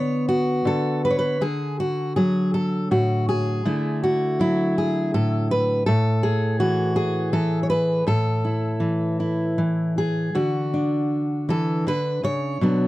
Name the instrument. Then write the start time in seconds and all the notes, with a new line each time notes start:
steel-string acoustic guitar
Already playing: D3 B3 C#5
0.29 F#4
0.65 D3 A4
1.05 B4
1.10 C#5
1.19 B4
1.41 D3 G#4
1.80 F#4
2.16 F#3 G#4
2.54 A4
2.91 A2 F#4
3.29 G#4
3.65 D3 A3 E4
4.04 F#4
4.39 F#3 E4
4.78 G#4
5.14 A2 A4
5.51 B4
5.86 A2 A4
6.23 G#4
6.60 E3 F#4
6.96 G#4
7.33 E3 A4
7.63 C#5
7.70 B4
8.07 A2 A4
8.45 E4
8.80 E3
9.20 E4
9.58 E3
9.98 G#4
10.35 D3 F#4
10.74 D4
11.49 E3 A4
11.87 D3 B4
12.23 C#3 C#5
12.61 B2 F#3 B3 D4